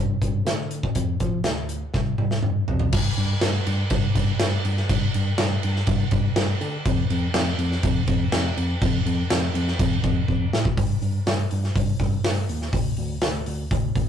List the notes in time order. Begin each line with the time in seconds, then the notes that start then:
Already playing: G2
0.22 G2, kick, closed hi-hat
0.45 D3, snare, closed hi-hat
0.71 closed hi-hat
0.83 kick
0.95 F2, kick, closed hi-hat
1.20 F3, kick, closed hi-hat
1.44 D2, snare, closed hi-hat
1.69 closed hi-hat
1.94 C2, kick, snare
2.18 C2, mid tom
2.31 snare
2.43 G2, mid tom
2.68 F2, floor tom
2.79 floor tom
2.92 G2, kick, crash
3.18 G2, crash
3.41 G2, snare, crash
3.66 G2, crash
3.90 G2, kick, crash
4.15 G2, kick, crash
4.39 G2, snare, crash
4.65 G2, crash
4.77 snare
4.89 G2, kick, crash
5.14 G2, crash
5.38 G2, snare, crash
5.63 G2, crash
5.76 snare
5.87 G2, kick, crash
6.11 G2, kick, crash
6.36 G2, snare, crash
6.61 D3, crash
6.85 F2, kick, crash
7.10 F2, crash
7.34 F2, snare, crash
7.59 F2, crash
7.72 snare
7.83 F2, kick, crash
8.07 F2, kick, crash
8.32 F2, snare, crash
8.57 F2, crash
8.82 F2, kick, crash
9.05 F2, crash
9.30 F2, snare, crash
9.54 F2, crash
9.68 snare
9.79 F2, kick, crash
10.04 F2, kick, crash
10.28 F2, kick
10.53 A2, snare
10.65 kick
10.77 G2, kick, open hi-hat
11.02 G2, open hi-hat
11.27 G2, snare, open hi-hat
11.51 G2, open hi-hat
11.64 snare
11.75 G2, kick, open hi-hat
12.00 G2, kick, open hi-hat
12.24 G2, snare, open hi-hat
12.49 D#2, open hi-hat
12.61 snare
12.73 D2, kick, open hi-hat
12.97 D2, open hi-hat
13.22 D2, snare, open hi-hat
13.46 D2, open hi-hat
13.71 D2, kick, open hi-hat
13.96 D2, kick, open hi-hat